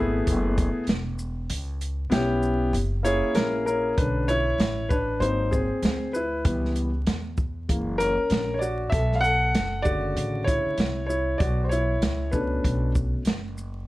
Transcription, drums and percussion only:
0.27 kick, closed hi-hat
0.58 kick, closed hi-hat, shaker
0.87 snare, closed hi-hat
1.19 shaker
1.50 closed hi-hat
1.81 closed hi-hat, shaker
2.12 snare, closed hi-hat
2.43 shaker
2.74 closed hi-hat
3.05 closed hi-hat, shaker
3.35 snare, closed hi-hat
3.67 shaker
3.98 kick, closed hi-hat
4.29 closed hi-hat, shaker
4.60 snare, closed hi-hat
4.90 kick, shaker
5.22 closed hi-hat
5.53 kick, shaker
5.82 snare, closed hi-hat
6.14 shaker
6.45 kick, closed hi-hat
6.65 snare
6.76 closed hi-hat, shaker
7.07 snare, closed hi-hat
7.37 kick, shaker
7.69 kick, closed hi-hat
8.00 closed hi-hat, shaker
8.30 snare, closed hi-hat
8.62 shaker
8.92 kick, closed hi-hat
9.12 snare
9.24 closed hi-hat, shaker
9.55 snare, closed hi-hat
9.85 kick, shaker
10.17 closed hi-hat
10.48 kick, closed hi-hat, shaker
10.78 snare, closed hi-hat
11.10 shaker
11.40 kick, closed hi-hat
11.72 closed hi-hat, shaker
12.02 snare, closed hi-hat
12.33 kick, shaker
12.64 kick, closed hi-hat
12.95 kick, shaker
13.25 snare, closed hi-hat
13.58 shaker

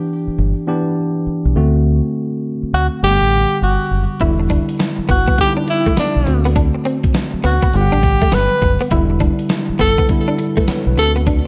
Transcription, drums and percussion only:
4.21 kick, closed hi-hat
4.50 kick, closed hi-hat
4.69 closed hi-hat
4.80 snare, closed hi-hat
5.09 kick, closed hi-hat
5.28 kick, closed hi-hat
5.38 kick, closed hi-hat
5.68 closed hi-hat
5.86 kick, closed hi-hat
5.97 snare, closed hi-hat
6.27 closed hi-hat
6.46 closed hi-hat
6.56 kick, closed hi-hat
6.85 closed hi-hat
7.03 kick, closed hi-hat
7.14 snare, closed hi-hat
7.44 closed hi-hat
7.62 kick, closed hi-hat
7.73 closed hi-hat
8.03 kick, closed hi-hat
8.21 kick, closed hi-hat
8.32 snare, closed hi-hat
8.62 kick, closed hi-hat
8.81 closed hi-hat
8.91 kick, closed hi-hat
9.20 kick, closed hi-hat
9.39 closed hi-hat
9.49 snare, closed hi-hat
9.79 kick, closed hi-hat
9.98 kick, closed hi-hat
10.09 kick, closed hi-hat
10.39 closed hi-hat
10.57 kick, closed hi-hat
10.68 snare, closed hi-hat
10.98 closed hi-hat
11.16 closed hi-hat
11.27 kick, closed hi-hat

